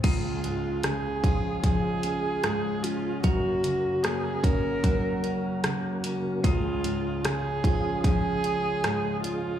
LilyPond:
<<
  \new Staff \with { instrumentName = "Viola" } { \time 4/4 \key des \major \tempo 4 = 75 f'4 aes'4 aes'4. f'8 | ges'4 aes'8 bes'4 r4. | f'4 aes'4 aes'4. f'8 | }
  \new Staff \with { instrumentName = "Tonewheel organ" } { \time 4/4 \key des \major <aes f' aes'>1 | <bes ges' bes'>1 | <aes f' aes'>1 | }
  \new Staff \with { instrumentName = "Tonewheel organ" } { \clef bass \time 4/4 \key des \major des1~ | des1~ | des1 | }
  \new Staff \with { instrumentName = "Steel-string acoustic guitar" } { \time 4/4 \key des \major des8 aes8 des'8 f'8 f8 des'8 aes8 des'8 | ges,8 bes8 des'8 ges'8 ges8 des'8 bes8 des'8 | des8 aes8 des'8 f'8 f8 des'8 aes8 des'8 | }
  \new Staff \with { instrumentName = "Grand piano" } { \clef bass \time 4/4 \key des \major des,8 aes,8 des8 f4. aes,4 | ges,8 des8 bes8 des'4. des4 | des,8 aes,8 des8 f4. aes,4 | }
  \new DrumStaff \with { instrumentName = "Drums" } \drummode { \time 4/4 <cymc hh bd>8 hh8 <hh ss>8 <hh bd>8 <hh bd>8 hh8 <hh ss>8 hh8 | <hh bd>8 hh8 <hh ss>8 <hh bd>8 <hh bd>8 hh8 <hh ss>8 hh8 | <hh bd>8 hh8 <hh ss>8 <hh bd>8 <hh bd>8 hh8 <hh ss>8 hh8 | }
>>